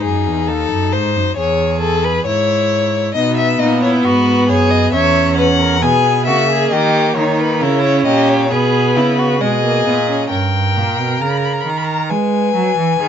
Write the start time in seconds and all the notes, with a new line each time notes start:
Already playing: D#4
0.04 F#2 G#4
0.26 E2
0.48 D#2 A4
0.71 F#2
0.92 G#2 C5
1.16 F#2
1.37 E2 G#4 C#5
1.81 A4
2.04 B4
2.26 G#2 E4 C#5
3.15 B2 B3 D#4 D#5
3.37 E5
3.59 A#2 D#4 D#5
3.82 E4 C#5
4.04 G#2 F#4 B4
4.49 F#2 G#4 C#5
4.71 D#5
4.93 E2 C#4 C#5 E5
5.37 B4 F#5
5.60 A#4
5.82 B2 B3 G#4 G#5
6.26 C#3 A#3 F#4 E5
6.50 G#4
6.72 D#3 G4 D#5
7.16 D#3 D#4 C#5
7.39 B4
7.61 C#3 C#4 E4 A#4
7.84 C#5
8.06 A#2 G4 D#5
8.29 C#5
8.51 B2 B3 G#4 B4
8.96 C#3 E4
9.18 F#4
9.41 B2 G#3 G#4 D#5
9.64 A#3
9.86 A#2 B3
10.09 C#4
10.31 G2 A#4 G5
10.76 A#2
10.98 B2
11.20 C#3 A#5
11.29 B5
11.37 A#5
11.45 B5
11.53 A#5
11.61 B5
11.65 D#3 A#5
11.77 B5
11.85 A#5
12.10 G#3 B4 G#5
12.54 F#3
12.77 E3
12.99 D#3 G#4